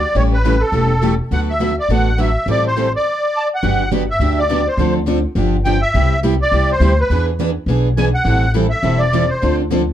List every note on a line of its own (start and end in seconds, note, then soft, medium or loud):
0.00 0.16 D5 medium
0.15 0.61 A1 medium
0.15 0.34 C#3 medium
0.15 0.34 E3 medium
0.15 0.34 G3 medium
0.15 0.34 A3 medium
0.15 0.34 C#4 medium
0.15 0.35 E4 medium
0.15 0.35 G4 medium
0.15 0.35 A4 medium
0.15 0.23 C#5 medium
0.33 0.62 B4 medium
0.44 0.55 C#3 medium
0.44 0.55 E3 medium
0.44 0.55 G3 medium
0.44 0.55 A3 medium
0.44 0.55 C#4 medium
0.44 0.55 E4 medium
0.44 0.55 G4 medium
0.44 0.55 A4 medium
0.61 1.15 A4 medium
0.72 1.19 E1 medium
0.72 0.92 C#3 medium
0.72 0.92 E3 medium
0.72 0.92 G3 medium
0.72 0.92 A3 medium
0.72 0.92 C#4 medium
0.72 0.92 E4 medium
0.72 0.93 G4 medium
0.72 0.92 A4 medium
1.02 1.12 C#3 medium
1.02 1.12 E3 medium
1.02 1.13 G3 medium
1.02 1.13 A3 medium
1.02 1.13 C#4 medium
1.02 1.13 E4 medium
1.02 1.13 G4 medium
1.02 1.13 A4 medium
1.31 1.77 D2 medium
1.31 1.50 D3 medium
1.31 1.50 F#3 medium
1.31 1.51 A3 medium
1.31 1.51 B3 medium
1.31 1.51 D4 medium
1.31 1.51 F#4 medium
1.31 1.51 A4 medium
1.31 1.51 B4 medium
1.31 1.40 F#5 medium
1.50 1.76 E5 medium
1.59 1.70 D3 medium
1.59 1.71 F#3 medium
1.59 1.71 A3 medium
1.59 1.71 B3 medium
1.59 1.71 D4 medium
1.59 1.71 F#4 medium
1.59 1.71 A4 medium
1.59 1.71 B4 medium
1.80 1.90 D5 medium
1.89 2.35 A1 medium
1.89 2.09 D3 medium
1.89 2.08 F#3 medium
1.89 2.09 A3 medium
1.89 2.09 B3 medium
1.89 2.09 D4 medium
1.89 2.09 F#4 medium
1.89 2.09 A4 medium
1.89 2.09 B4 medium
1.89 2.20 F#5 medium
2.18 2.28 D3 medium
2.18 2.29 F#3 medium
2.18 2.29 A3 medium
2.18 2.29 B3 medium
2.18 2.29 D4 medium
2.18 2.29 F#4 medium
2.18 2.29 A4 medium
2.18 2.29 B4 medium
2.18 2.49 E5 medium
2.46 2.93 A1 medium
2.46 2.67 E3 medium
2.46 2.67 G3 medium
2.46 2.67 C4 medium
2.46 2.67 E4 medium
2.46 2.67 A4 medium
2.51 2.65 D5 medium
2.67 2.93 C5 medium
2.77 2.87 E3 medium
2.77 2.87 G3 medium
2.77 2.87 C4 medium
2.77 2.87 E4 medium
2.77 2.87 A4 medium
2.96 3.48 D5 medium
3.37 3.44 A5 medium
3.55 3.91 F#5 medium
3.63 4.09 G1 medium
3.63 3.82 D3 medium
3.63 3.82 F#3 medium
3.63 3.82 B3 medium
3.63 3.82 D4 medium
3.63 3.82 G4 medium
3.92 4.02 D3 medium
3.92 4.02 F#3 medium
3.92 4.02 B3 medium
3.92 4.02 D4 medium
3.92 4.02 G4 medium
4.11 4.39 E5 medium
4.19 4.66 D2 medium
4.19 4.40 D3 medium
4.19 4.40 F#3 medium
4.19 4.40 B3 medium
4.19 4.40 D4 medium
4.19 4.40 G4 medium
4.39 4.68 D5 medium
4.49 4.60 D3 medium
4.49 4.60 F#3 medium
4.49 4.60 B3 medium
4.49 4.60 D4 medium
4.49 4.61 G4 medium
4.67 4.94 C5 medium
4.77 5.24 D2 medium
4.77 4.98 D3 medium
4.77 4.98 F3 medium
4.77 4.98 C4 medium
4.77 4.98 D4 medium
4.77 4.98 A4 medium
5.08 5.18 D3 medium
5.08 5.18 F3 medium
5.08 5.18 C4 medium
5.08 5.18 D4 medium
5.08 5.19 A4 medium
5.35 5.82 G1 medium
5.35 5.56 D3 medium
5.35 5.56 F3 medium
5.35 5.56 B3 medium
5.35 5.56 D4 medium
5.35 5.56 G4 medium
5.65 5.76 D3 medium
5.65 5.76 F3 medium
5.65 5.77 B3 medium
5.65 5.77 D4 medium
5.65 5.77 G4 medium
5.65 5.81 G5 medium
5.82 6.20 E5 loud
5.94 6.40 C2 medium
5.94 6.14 C3 medium
5.94 6.14 G3 medium
5.94 6.14 B3 medium
5.94 6.14 E4 medium
5.94 6.14 G4 medium
6.23 6.34 C3 medium
6.23 6.34 G3 medium
6.23 6.34 B3 medium
6.23 6.34 E4 medium
6.23 6.34 G4 loud
6.42 6.71 D5 medium
6.52 6.76 C2 medium
6.52 6.72 C3 medium
6.52 6.72 G3 medium
6.52 6.72 B3 medium
6.52 6.72 E4 medium
6.52 6.72 G4 medium
6.72 7.00 C5 medium
6.80 7.05 D2 medium
6.80 6.92 C3 medium
6.80 6.92 G3 medium
6.80 6.92 B3 medium
6.80 6.92 E4 medium
6.80 6.92 G4 medium
7.00 7.26 B4 medium
7.10 7.56 E2 medium
7.10 7.29 E3 medium
7.10 7.29 B3 medium
7.10 7.30 D4 medium
7.10 7.30 G#4 medium
7.10 7.30 B4 medium
7.39 7.50 E3 medium
7.39 7.50 B3 medium
7.39 7.50 D4 medium
7.39 7.50 G#4 medium
7.39 7.50 B4 medium
7.66 8.13 B1 medium
7.66 7.88 E3 medium
7.66 7.88 B3 medium
7.66 7.88 B4 medium
7.70 7.88 D4 medium
7.70 7.88 G#4 medium
7.97 8.08 E3 medium
7.97 8.08 B3 medium
7.97 8.08 D4 medium
7.97 8.08 G#4 medium
7.97 8.08 B4 medium
7.97 8.05 G#5 loud
8.14 8.52 F#5 medium
8.25 8.71 A1 medium
8.25 8.45 E3 medium
8.25 8.46 G3 medium
8.25 8.46 C4 medium
8.25 8.46 E4 medium
8.25 8.46 A4 medium
8.56 8.66 E3 medium
8.56 8.66 G3 medium
8.56 8.66 C4 medium
8.56 8.66 E4 medium
8.56 8.66 A4 medium
8.70 9.01 E5 medium
8.83 9.29 E1 medium
8.83 9.03 E3 medium
8.83 9.03 G3 medium
8.83 9.03 C4 medium
8.83 9.04 E4 medium
8.83 9.04 A4 medium
8.99 9.29 D5 medium
9.14 9.24 E3 medium
9.14 9.24 G3 medium
9.14 9.24 C4 medium
9.14 9.24 E4 medium
9.14 9.24 A4 medium
9.29 9.56 C5 medium
9.43 9.88 D2 medium
9.43 9.61 D3 medium
9.43 9.61 F3 medium
9.43 9.62 C4 medium
9.43 9.62 D4 medium
9.43 9.62 A4 medium
9.70 9.81 D3 medium
9.70 9.81 F3 medium
9.70 9.81 C4 medium
9.70 9.81 D4 medium
9.70 9.81 A4 loud